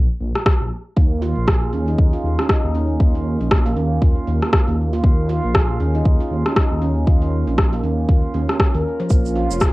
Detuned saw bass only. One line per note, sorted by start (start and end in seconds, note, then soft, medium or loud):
0.21 0.33 A#1 medium
0.61 0.70 A#1 loud
0.97 1.33 D#2 loud
1.37 1.71 A#1 medium
1.73 1.95 D#2 medium
1.99 2.11 D#2 medium
2.24 2.37 D#2 medium
2.64 2.98 D#2 medium
3.00 3.37 D#2 loud
3.41 3.74 A#1 medium
3.76 3.99 D#2 medium
4.02 4.14 D#2 medium
4.27 4.40 D#2 medium
4.68 5.01 D#2 medium
5.04 5.40 D#2 loud
5.44 5.77 A#1 medium
5.80 6.02 D#2 medium
6.05 6.18 D#2 medium
6.31 6.43 D#2 medium
6.71 7.04 D#2 medium
7.07 7.44 D#2 loud
7.47 7.81 A#1 medium
7.83 8.06 D#2 medium
8.09 8.21 D#2 medium
8.34 8.47 D#2 medium
8.74 8.83 D#2 medium
9.11 9.47 A#1 medium
9.51 9.73 F1 medium